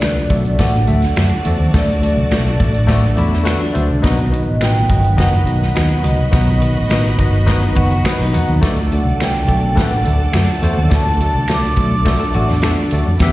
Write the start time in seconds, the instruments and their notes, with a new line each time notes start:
Already playing: fingered electric bass C2, tine electric piano D3, tonewheel organ D3 F#3 A3, vibraphone D5
0.01 tine electric piano A3 D4 F#4 A4 B4, finger snap, snare, closed hi-hat
0.30 fingered electric bass B1, tine electric piano A3 D4 F#4 A4 D5, kick, closed hi-hat
0.45 closed hi-hat
0.59 fingered electric bass A1, tine electric piano A3 D4 F#4 A4 D5, violin section F#4 D5 A5, vibraphone F#5, kick, snare, closed hi-hat
0.87 fingered electric bass D2, tine electric piano A3 D4 F#4 A4 E5, vibraphone F#5, closed hi-hat
1.02 snare, closed hi-hat
1.16 fingered electric bass F#2, tine electric piano A3 D4 F#4 A4 D5, finger snap, snare, closed hi-hat
1.45 fingered electric bass E2, tine electric piano A3 D4 F#4 A4 D5, vibraphone C5, closed hi-hat
1.60 fingered electric bass D#2
1.74 fingered electric bass D2, tine electric piano D3 A3 D4 F#4 A4 D5, vibraphone D5, kick, snare, closed hi-hat
2.02 tine electric piano A3 D4 F#4 A4 D5, vibraphone D5, closed hi-hat
2.17 fingered electric bass C2
2.30 fingered electric bass B1, tine electric piano A3 D4 F#4 A4 D5, finger snap, snare, closed hi-hat
2.59 fingered electric bass A1, tine electric piano A3 D4 F#4 A4 D5, kick, closed hi-hat
2.74 closed hi-hat
2.87 tine electric piano A3 D4 F#4 A4 D5, kick, snare, closed hi-hat
3.16 fingered electric bass E2, tine electric piano A3 D4 F#4 A4 D5, clean electric guitar E4, closed hi-hat
3.33 snare
3.44 tine electric piano A3 D4 F#4 A4 B4, clean electric guitar F#4, finger snap, snare, closed hi-hat
3.60 clean electric guitar D4
3.73 fingered electric bass D2, tine electric piano A3 D4 F#4 A4 C5, closed hi-hat
3.90 fingered electric bass C2
4.02 fingered electric bass B1, tine electric piano B2 B3 D#4 F#4 B4 D#5, tonewheel organ D#3 B3, kick, snare, closed hi-hat
4.31 tine electric piano B3 D#4 F#4 B4 D#5, vibraphone D#5, closed hi-hat
4.47 fingered electric bass A1
4.60 tine electric piano B3 D#4 F#4 B4 D#5, vibraphone G5, finger snap, snare, closed hi-hat
4.89 fingered electric bass G1, tine electric piano B3 D#4 F#4 B4 D#5, kick, closed hi-hat
5.04 closed hi-hat
5.17 fingered electric bass F#1, tine electric piano B3 D#4 F#4 B4 D#5, violin section F#4 D#5 B5, vibraphone F#5, kick, snare, closed hi-hat
5.45 fingered electric bass B1, tine electric piano B3 D#4 F#4 B4 D#5, closed hi-hat
5.62 snare
5.74 fingered electric bass D#2, tine electric piano B3 D#4 F#4 B4 D#5, finger snap, snare, closed hi-hat
6.02 fingered electric bass C#2, tine electric piano B3 D#4 F#4 B4 D#5, vibraphone D#5, closed hi-hat
6.19 fingered electric bass C2
6.31 fingered electric bass B1, tine electric piano B2 B3 D#4 F#4 B4 D#5, kick, snare, closed hi-hat
6.60 tine electric piano B3 D#4 F#4 B4 D#5, closed hi-hat
6.77 fingered electric bass A1
6.90 tine electric piano B3 D#4 F#4 B4 D#5, finger snap, snare, closed hi-hat
7.18 fingered electric bass G1, tine electric piano B3 D#4 F#4 B4 D#5, kick, closed hi-hat
7.34 closed hi-hat
7.46 tine electric piano B3 D#4 F#4 B4 D#5, kick, snare, closed hi-hat
7.63 clean electric guitar D#4
7.74 fingered electric bass F#1, tine electric piano B3 D#4 F#4 B4 F#5, clean electric guitar F#4, kick, closed hi-hat
7.90 clean electric guitar F#4, closed hi-hat
8.04 tine electric piano B3 D#4 F#4 B4 D#5 B5, finger snap, snare, closed hi-hat
8.20 fingered electric bass B1, clean electric guitar D#4
8.33 fingered electric bass E2, tine electric piano B3 D#4 F#4 B4 D#5 F#5, closed hi-hat
8.48 fingered electric bass D#2
8.60 fingered electric bass D2, tonewheel organ D3 A3, tine electric piano D3 A3 D4 F#4 A4 D5, violin section A4 D5 A5, kick, snare, closed hi-hat
8.91 tine electric piano A3 D4 F#4 A4 D5, vibraphone F#5, closed hi-hat
9.05 fingered electric bass C2
9.19 tine electric piano A3 D4 F#4 A4 D5, vibraphone G5, finger snap, snare, closed hi-hat
9.47 fingered electric bass B1, tine electric piano A3 D4 F#4 A4 D5, kick, closed hi-hat
9.75 fingered electric bass A1, tine electric piano A3 D4 F#4 A4 B4, kick, snare, closed hi-hat
9.81 vibraphone F#5
10.04 fingered electric bass D2, tine electric piano A3 D4 F#4 A4 D5, closed hi-hat
10.32 fingered electric bass F#2, tine electric piano A3 D4 F#4 A4 D5, finger snap, snare, closed hi-hat
10.62 fingered electric bass E2, tine electric piano A3 D4 F#4 A4 C5, closed hi-hat
10.78 fingered electric bass D#2
10.89 fingered electric bass D2, tine electric piano D3 A3 D4 F#4 A4 D5, kick, snare, closed hi-hat
10.95 vibraphone A5
11.20 tine electric piano A3 D4 F#4 A4 D5, closed hi-hat
11.35 fingered electric bass C2
11.48 tine electric piano A3 D4 F#4 A4 D5, finger snap, snare, closed hi-hat
11.53 vibraphone D6
11.76 fingered electric bass B1, tine electric piano A3 D4 F#4 A4 D5, kick, closed hi-hat
12.05 tine electric piano A3 D4 F#4 A4 D5, kick, snare, closed hi-hat
12.20 clean electric guitar A4
12.34 fingered electric bass A1, tine electric piano A3 D4 F#4 A4 D5, clean electric guitar F#4, closed hi-hat
12.49 fingered electric bass E2, clean electric guitar D4, snare
12.62 tine electric piano A3 D4 F#4 A4, finger snap, snare, closed hi-hat
12.66 tine electric piano D5
12.91 fingered electric bass D2, tine electric piano A3 D4 F#4 A4 D5, closed hi-hat
13.07 fingered electric bass F2
13.18 fingered electric bass E2, tonewheel organ E3 B3 G4, tine electric piano E3 B3 E4 G4 B4, violin section E4 B4 G5, kick, snare, closed hi-hat
13.22 tine electric piano E5